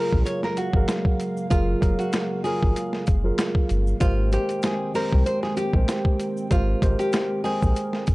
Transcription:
Already playing: analog synth pad C#3 F#3 G#3 A#3 F5, tine electric piano F#3 F4 G#4 A#4, nylon-string guitar A#4
0.13 sub bass A#1, kick
0.25 nylon-string guitar C#5, closed hi-hat, shaker
0.43 nylon-string guitar A#4, snare
0.57 nylon-string guitar F#4, closed hi-hat, shaker
0.73 sub bass G#1, tine electric piano F#3 G#4 A#4 F5, kick
0.88 snare, closed hi-hat, shaker
1.05 kick
1.20 closed hi-hat, shaker
1.37 shaker
1.50 sub bass F#1, tine electric piano F#3 F4 G#4 A#4, nylon-string guitar F4, kick, closed hi-hat, shaker
1.80 sub bass F#1, tine electric piano F#3 G#4 A#4 F5, kick, closed hi-hat, shaker
1.99 nylon-string guitar F#4, closed hi-hat, shaker
2.13 snare, closed hi-hat, shaker
2.44 tine electric piano F#3 F4 G#4 A#4, nylon-string guitar G#4, open hi-hat, shaker
2.63 sub bass G#1, kick
2.76 closed hi-hat, shaker
2.93 snare
3.07 sub bass F#1, kick, closed hi-hat, shaker
3.24 tine electric piano F#3 F4 G#4 A#4
3.38 snare, closed hi-hat, shaker
3.55 kick
3.69 sub bass G1, closed hi-hat, shaker
3.87 shaker
4.00 sub bass G#1, analog synth pad D#3 G#3 C4 G5, tine electric piano G#3 G4 A#4 C5, nylon-string guitar F4, kick, closed hi-hat, shaker
4.32 tine electric piano G#3 G4 A#4 C5, nylon-string guitar G4, closed hi-hat, shaker
4.49 closed hi-hat, shaker
4.62 nylon-string guitar G#4, snare, closed hi-hat, shaker
4.94 tine electric piano G#3 G4 A#4 C5, nylon-string guitar A#4, open hi-hat, shaker
5.13 sub bass C2, kick
5.26 nylon-string guitar C5, closed hi-hat, shaker
5.43 nylon-string guitar G#4, snare
5.57 nylon-string guitar G4, closed hi-hat, shaker
5.73 sub bass A#1, tine electric piano G#3 G4 A#4 C5, kick
5.88 snare, closed hi-hat, shaker
6.05 kick
6.20 closed hi-hat, shaker
6.37 shaker
6.50 sub bass G#1, tine electric piano G#3 G4 A#4 C5, nylon-string guitar F4, analog synth pad A#4, kick, closed hi-hat, shaker
6.81 sub bass G#1, tine electric piano G#3 G4 A#4 C5, kick, closed hi-hat, shaker
6.99 nylon-string guitar G4, closed hi-hat, shaker
7.12 snare, closed hi-hat, shaker
7.44 tine electric piano G#3 A#4 C5 G5, nylon-string guitar G#4, open hi-hat, shaker
7.62 sub bass A#1, kick, shaker
7.76 closed hi-hat, shaker
7.93 snare
8.07 sub bass G#1, kick, closed hi-hat, shaker

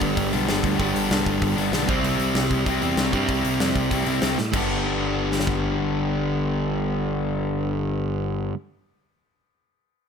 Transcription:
Already playing: distorted electric guitar G2 D3 G3 B3 D4
0.01 picked electric bass G1, kick, open hi-hat
0.17 picked electric bass G1, kick, open hi-hat
0.33 picked electric bass B1, distorted electric guitar G2 D3 G3 B3 D4, open hi-hat
0.48 picked electric bass G1, distorted electric guitar G2 D3 G3 B3 D4, snare, open hi-hat
0.64 picked electric bass D2, kick, open hi-hat
0.79 picked electric bass G1, distorted electric guitar G2 D3 G3 B3 D4, kick, open hi-hat
0.95 picked electric bass G1, open hi-hat
1.10 picked electric bass C2, snare, open hi-hat
1.26 picked electric bass G1, kick, open hi-hat
1.42 picked electric bass G1, kick, open hi-hat
1.56 picked electric bass G1, distorted electric guitar G2 D3 G3 B3 D4, open hi-hat
1.71 picked electric bass B1, distorted electric guitar G2 D3 G3 B3 D4, snare, open hi-hat
1.88 picked electric bass C2, distorted electric guitar C3 G3 C4 E4, kick, open hi-hat
2.03 picked electric bass C2, open hi-hat
2.19 picked electric bass C2, open hi-hat
2.34 picked electric bass C2, snare, open hi-hat
2.51 picked electric bass C2, kick, open hi-hat
2.66 picked electric bass C2, distorted electric guitar C3 G3 C4 E4, kick, open hi-hat
2.81 picked electric bass E2, distorted electric guitar C3 G3 C4 E4, open hi-hat
2.97 picked electric bass C2, snare, open hi-hat
3.12 picked electric bass G2, distorted electric guitar C3 G3 C4 E4, kick, open hi-hat
3.29 picked electric bass C2, kick, open hi-hat
3.45 picked electric bass C2, open hi-hat
3.60 picked electric bass F2, snare, open hi-hat
3.75 picked electric bass C2, kick, open hi-hat
3.91 picked electric bass C2, distorted electric guitar C3 G3 C4 E4, kick, open hi-hat
4.06 picked electric bass C2, distorted electric guitar C3 G3 C4 E4, open hi-hat
4.22 picked electric bass C2, snare, open hi-hat
4.38 picked electric bass A2, snare
4.53 picked electric bass G1, distorted electric guitar G2 D3 G3 B3 D4, kick, crash
5.32 snare
5.40 snare
5.47 kick

